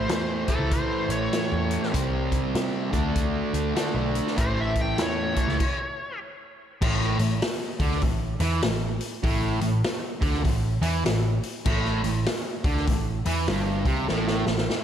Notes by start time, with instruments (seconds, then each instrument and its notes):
Already playing: distorted electric guitar A2 E3 A3, electric slide guitar C5
0.09 picked electric bass E2, snare, closed hi-hat
0.48 distorted electric guitar A2 E3 A3, electric slide guitar A4, kick, closed hi-hat
0.59 picked electric bass C#2
0.71 electric slide guitar C5, kick, closed hi-hat
1.09 picked electric bass A1, electric slide guitar C#5, closed hi-hat
1.33 snare, closed hi-hat
1.52 picked electric bass E2
1.71 closed hi-hat
1.83 snare
1.93 picked electric bass C2, distorted electric guitar C3 G3 C4, kick, closed hi-hat
2.32 kick, closed hi-hat
2.55 picked electric bass C3, snare, closed hi-hat
2.91 picked electric bass D2, distorted electric guitar D3 A3 D4, kick, closed hi-hat
3.16 kick, closed hi-hat
3.54 picked electric bass D2, closed hi-hat
3.75 distorted electric guitar D3 A3 D4, snare, closed hi-hat
3.95 picked electric bass B1
4.15 closed hi-hat
4.27 snare
4.36 picked electric bass A1, distorted electric guitar A2 E3 A3, kick, closed hi-hat
4.40 electric slide guitar C5
4.61 electric slide guitar E5
4.75 kick, closed hi-hat
4.82 electric slide guitar G5
4.98 picked electric bass E2, electric slide guitar C#5, snare, closed hi-hat
5.35 distorted electric guitar A2 E3 A3, kick, closed hi-hat
5.47 picked electric bass C#2, snare
5.60 kick, crash
6.81 picked electric bass A1, distorted electric guitar A2, kick, crash
7.01 snare
7.19 picked electric bass A1, distorted electric guitar A2, open hi-hat
7.42 snare, open hi-hat
7.80 picked electric bass D2, distorted electric guitar D3, kick, open hi-hat
7.92 snare
8.02 picked electric bass A1, distorted electric guitar A2, kick, open hi-hat
8.40 picked electric bass E2, distorted electric guitar E3, open hi-hat
8.62 picked electric bass A1, distorted electric guitar A2, snare, open hi-hat
9.01 open hi-hat
9.23 picked electric bass A1, distorted electric guitar A2, kick, open hi-hat
9.61 picked electric bass A1, distorted electric guitar A2, open hi-hat
9.84 snare, open hi-hat
10.21 picked electric bass D2, distorted electric guitar D3, kick, open hi-hat
10.34 snare
10.44 picked electric bass A1, distorted electric guitar A2, kick, open hi-hat
10.82 picked electric bass E2, distorted electric guitar E3, open hi-hat
11.05 picked electric bass A1, distorted electric guitar A2, snare, open hi-hat
11.43 open hi-hat
11.65 picked electric bass A1, distorted electric guitar A2, kick, crash
11.85 snare
12.03 picked electric bass A1, distorted electric guitar A2, open hi-hat
12.26 snare, open hi-hat
12.64 picked electric bass D2, distorted electric guitar D3, kick, open hi-hat
12.77 snare
12.87 picked electric bass A1, distorted electric guitar A2, kick, open hi-hat
13.26 picked electric bass E2, distorted electric guitar E3, open hi-hat
13.48 picked electric bass G1, distorted electric guitar G2, snare, open hi-hat
13.85 picked electric bass C2, distorted electric guitar C3, kick, open hi-hat
14.08 picked electric bass A1, distorted electric guitar A2, snare
14.27 snare
14.47 picked electric bass A1, distorted electric guitar A2, snare
14.58 snare
14.70 snare